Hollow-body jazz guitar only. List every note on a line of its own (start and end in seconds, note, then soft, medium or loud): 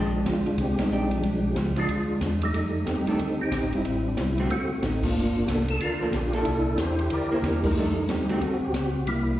0.00 0.42 G#3 medium
0.00 0.42 D4 medium
0.00 0.42 G4 medium
0.92 1.24 D4 medium
0.92 1.25 G4 medium
1.77 1.88 F3 medium
1.77 1.88 G#3 medium
1.77 1.88 D4 medium
3.08 3.19 D#3 medium
3.08 3.19 A3 medium
3.08 3.19 D4 medium
4.39 4.49 D3 medium
4.39 4.49 A3 medium
4.39 4.50 C4 medium
4.39 4.50 F#4 medium
6.01 6.12 F3 medium
6.01 6.12 A#3 medium
6.01 6.13 D4 medium
6.33 6.76 A#3 medium
6.33 6.76 E4 medium
6.33 6.76 A4 medium
7.32 7.74 A#3 medium
7.32 7.74 E4 medium
7.77 7.95 D#3 medium
7.77 7.95 A3 medium
7.77 7.95 D4 medium
8.29 8.40 D3 medium
8.29 8.40 A3 medium
8.29 8.41 C4 medium
8.29 8.40 F#4 medium